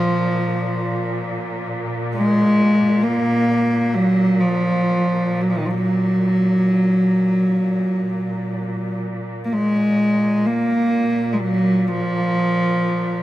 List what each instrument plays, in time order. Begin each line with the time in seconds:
Already playing: cello section A#2, cello F3
2.15 cello G#3
3.03 cello A#3
3.94 cello F#3
4.40 cello F3
5.41 cello F#3
5.50 cello F3
5.58 cello D#3
5.66 cello F3
5.75 cello F#3
9.45 cello A#3
9.53 cello section A#2, cello G#3
10.46 cello A#3
11.33 cello G#3
11.41 cello F#3
11.88 cello F3